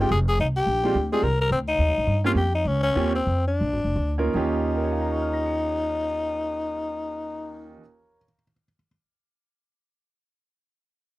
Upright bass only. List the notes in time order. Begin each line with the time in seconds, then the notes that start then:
Already playing: G1
0.11 F1
0.39 C2
0.66 A#1
0.95 D2
1.22 C2
1.51 D2
1.79 D#2
1.88 C#2
1.98 A#1
2.07 G2
2.35 F2
2.65 C#2
2.95 D#2
3.27 F2
3.61 A#1
3.72 G#1
3.84 F1
3.96 D2
4.34 D#2